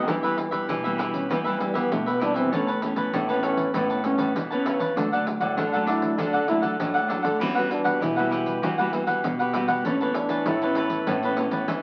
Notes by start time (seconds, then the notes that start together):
0.07 E3 G3 B3 E4 G4 B4 E5, pandeiro
0.23 G3 B3 E4 G4 B4 E5, pandeiro
0.37 muted cavaquinho stroke, pandeiro
0.51 B2 G4 B4 E5, pandeiro
0.68 B2 E3 E4 G4 B4 E5, pandeiro
0.84 G3 B3 E4 G4 B4 E5, pandeiro
0.98 E4 G4 B4 E5, pandeiro
1.14 C#4, pandeiro
1.29 E3 G3 B3 E4 G4 B4 E5, pandeiro
1.44 E3 G3 B3 E4 G4 B4 E5, pandeiro
1.59 G3 B3 E4, muted cavaquinho stroke, pandeiro
1.74 E3 B3 G4 B4 E5, pandeiro
1.92 B2 A3, pandeiro
2.06 B3 G4 B4 E5, pandeiro
2.20 G3 B3 D4 E4 G4 B4 E5, pandeiro
2.34 E3 C4 G4 B4 E5, pandeiro
2.52 A2 E3 B3 C#4 A4 B4 C#5 A5, pandeiro
2.67 B4 C#5 A5, pandeiro
2.81 E3 B3 C#4, muted cavaquinho stroke, pandeiro
2.96 E3 B4 C#5 A5, pandeiro
3.13 A2 E3 B3 A4 B4 C#5 A5, pandeiro
3.29 E3 B3 C#4 B4 C#5 A5, pandeiro
3.43 C#4 A4 B4 C#5 A5, pandeiro
3.57 pandeiro
3.74 A2 E3 B3 C#4 A4 B4 C#5 A5, pandeiro
3.90 B4 C#5 A5, pandeiro
4.04 E3 B3 C#4, muted cavaquinho stroke, pandeiro
4.18 A2 B4 C#5 A5, pandeiro
4.36 B2 E3, pandeiro
4.51 E3 B3 C#4 B4 C#5 A5, pandeiro
4.64 C#3 A4 B4 C#5 A5, pandeiro
4.79 B4 C#5 A5, pandeiro
4.96 D3 F#3 A3 D4 A4 D5 F#5, pandeiro
5.12 F#3 A3 D4 A4 D5 F#5, pandeiro
5.26 muted cavaquinho stroke, pandeiro
5.40 A2 A4 D5 F#5, pandeiro
5.57 A2 D3 D4 A4 D5 F#5, pandeiro
5.73 F#3 A3 D4 A4 D5 F#5, pandeiro
5.86 D4 E4 A4 D5 F#5, pandeiro
6.02 pandeiro
6.18 D3 F#3 A3 D4 A4 D5 F#5, pandeiro
6.33 A4 D5 F#5, pandeiro
6.48 F#3 A3 D4 E4, muted cavaquinho stroke, pandeiro
6.61 D3 A4 D5 F#5, pandeiro
6.80 A2 F#3 A3 D4, pandeiro
6.94 A4 D5 F#5, pandeiro
7.08 F#3 A3 D4 A4 D5 F#5, pandeiro
7.23 D3 A4 D5 F#5, pandeiro
7.39 E3 G3 B3 C#4 E4 F#4 G4 B4 F#5, pandeiro
7.55 G3 B3 F#4 G4 B4 F#5, pandeiro
7.70 D4, muted cavaquinho stroke, pandeiro
7.84 B2 G4 B4 F#5, pandeiro
8.00 B2 E3 E4 G4 B4 F#5, pandeiro
8.16 G3 B3 F#4 G4 B4 F#5, pandeiro
8.30 E4 G4 B4 F#5, pandeiro
8.46 pandeiro
8.62 E3 G3 B3 E4 F#4 G4 B4 F#5, pandeiro
8.78 G3 B3 F#4 G4 B4 F#5, pandeiro
8.92 G3 B3 F#4, muted cavaquinho stroke, pandeiro
9.07 E3 G4 B4 F#5, pandeiro
9.24 B2, pandeiro
9.39 G4 B4 F#5, pandeiro
9.53 G3 B3 E4 F#4 G4 B4 F#5, pandeiro
9.68 B2 G4 B4 F#5, pandeiro
9.85 A2 E3 B3 C#4 A4 B4 C#5 A5, pandeiro
10.01 E3 B3 B4 C#5 A5, pandeiro
10.14 D4, muted cavaquinho stroke, pandeiro
10.29 E3 B4 C#5 A5, pandeiro
10.46 A2 E3 E4 A4 B4 C#5 A5, pandeiro
10.62 E3 B3 C#4 B4 C#5 A5, pandeiro
10.75 A4 B4 C#5 A5, pandeiro
10.90 pandeiro
11.07 A2 E3 B3 C#4 A4 B4 C#5 A5, pandeiro
11.23 E3 B3 C#4 B4 C#5 A5, pandeiro
11.37 E3 B3 C#4, muted cavaquinho stroke, pandeiro
11.51 A2 B4 C#5 A5, pandeiro
11.68 E3, pandeiro